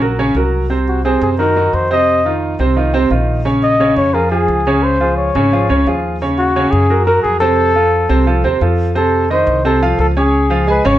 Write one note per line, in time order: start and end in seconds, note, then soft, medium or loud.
0.00 0.31 A#1 medium
0.00 0.15 F#3 medium
0.00 0.15 F#4 medium
0.00 0.16 A#4 medium
0.19 0.33 C#3 medium
0.19 0.33 C#4 medium
0.19 0.33 C#5 medium
0.35 1.15 C2 medium
0.35 0.64 F#3 medium
0.35 0.64 F#4 medium
0.35 0.64 A#4 medium
0.70 0.98 C3 medium
0.70 0.98 C4 medium
0.70 0.98 C5 medium
0.88 1.04 F#4 medium
1.04 1.33 C3 medium
1.04 1.33 C4 medium
1.04 1.20 G#4 medium
1.04 1.33 C5 medium
1.22 1.70 F#2 medium
1.22 1.29 G#4 medium
1.39 1.53 D#3 medium
1.39 1.53 D#4 medium
1.39 1.53 F#4 medium
1.39 1.76 A#4 medium
1.56 1.84 D#3 medium
1.56 1.85 D#4 medium
1.56 1.85 F#4 medium
1.73 2.54 F2 medium
1.73 1.91 C5 loud
1.90 2.19 C3 medium
1.90 2.19 C4 medium
1.90 2.19 C5 medium
1.90 2.39 D#5 loud
2.25 2.53 D#3 medium
2.25 2.54 D#4 medium
2.25 2.54 F4 medium
2.59 3.07 C2 medium
2.59 2.74 C3 medium
2.59 2.74 C4 medium
2.59 2.74 C5 medium
2.76 2.91 D#3 medium
2.76 2.91 D#4 medium
2.76 2.91 F4 medium
2.94 3.08 C3 medium
2.94 3.08 C4 medium
2.94 3.08 C5 medium
3.10 3.91 A#1 medium
3.10 3.39 D#3 medium
3.10 3.39 D#4 medium
3.10 3.39 F4 medium
3.45 3.74 C#3 medium
3.45 3.73 C#4 medium
3.45 3.74 C#5 medium
3.63 3.95 D#5 medium
3.80 4.08 C#3 medium
3.80 4.08 C#4 medium
3.80 4.09 C#5 medium
3.96 4.45 F2 medium
3.96 4.15 C#5 medium
4.14 4.28 F3 medium
4.14 4.29 F4 medium
4.14 4.29 G#4 medium
4.14 4.30 A#4 medium
4.31 4.60 F3 medium
4.31 4.60 F4 medium
4.31 4.84 G#4 medium
4.31 4.60 G#4 medium
4.48 5.29 C#2 medium
4.67 4.95 C#3 medium
4.67 4.95 C#4 medium
4.67 4.95 C#5 medium
4.83 5.16 C5 loud
5.00 5.29 F3 medium
5.00 5.29 F4 medium
5.00 5.29 G#4 medium
5.17 5.99 C#5 medium
5.35 5.67 G#1 medium
5.35 5.49 C#3 medium
5.35 5.49 C#4 medium
5.35 5.50 C#5 medium
5.53 5.66 F3 medium
5.53 5.67 F4 medium
5.53 5.67 G#4 medium
5.69 5.85 C#2 medium
5.69 5.83 C#3 medium
5.69 5.83 C#4 medium
5.69 5.84 C#5 medium
5.86 6.67 D#2 medium
5.86 6.15 F3 medium
5.86 6.15 F4 medium
5.86 6.15 G#4 medium
6.22 6.49 C#3 medium
6.22 6.50 C#4 medium
6.22 6.50 C#5 medium
6.38 6.72 F#4 medium
6.56 6.84 C#3 medium
6.56 6.84 C#4 medium
6.56 6.84 C#5 medium
6.71 7.20 F#2 medium
6.71 7.05 G#4 loud
6.90 7.04 F#3 medium
6.90 7.04 F#4 medium
6.90 7.04 A#4 medium
7.05 7.35 F#3 medium
7.05 7.35 F#4 medium
7.05 7.22 A#4 medium
7.05 7.35 A#4 medium
7.22 8.04 F2 medium
7.22 7.39 G#4 medium
7.40 7.69 C3 medium
7.40 7.69 C4 medium
7.40 8.57 A4 medium
7.40 7.70 C5 medium
7.76 8.04 F3 medium
7.76 8.04 F4 medium
7.76 8.04 A4 medium
8.09 8.42 C2 medium
8.09 8.24 C3 medium
8.09 8.24 C4 medium
8.09 8.24 C5 medium
8.26 8.41 F3 medium
8.26 8.41 F4 medium
8.26 8.41 A4 medium
8.44 8.60 D#2 medium
8.44 8.58 C3 medium
8.44 8.58 C4 medium
8.44 8.59 C5 medium
8.61 9.42 F2 medium
8.61 8.90 F3 medium
8.61 8.90 F4 medium
8.61 8.90 A4 medium
8.95 9.23 C3 medium
8.95 9.24 C4 medium
8.95 9.28 A4 medium
8.95 9.24 C5 medium
9.30 9.58 D#3 medium
9.30 9.59 D#4 medium
9.30 9.63 C5 medium
9.30 9.59 D#5 medium
9.47 9.95 C2 medium
9.65 9.79 C3 medium
9.65 9.79 C4 medium
9.65 9.97 A4 medium
9.65 9.79 C5 medium
9.82 10.10 F3 medium
9.82 10.10 F4 medium
9.82 10.10 F5 medium
9.99 10.79 C#2 medium
9.99 10.07 A4 medium
10.17 10.45 C#4 medium
10.17 10.65 G#4 medium
10.17 10.45 C#5 medium
10.17 10.45 C#6 medium
10.50 10.64 F3 medium
10.50 10.65 F4 medium
10.50 10.65 F5 medium
10.67 10.82 G#3 medium
10.67 10.82 G#4 medium
10.67 10.88 B4 medium
10.67 10.82 G#5 medium
10.85 10.99 G#1 loud
10.85 10.99 C#3 medium
10.85 10.99 C#4 medium
10.85 10.99 C#5 medium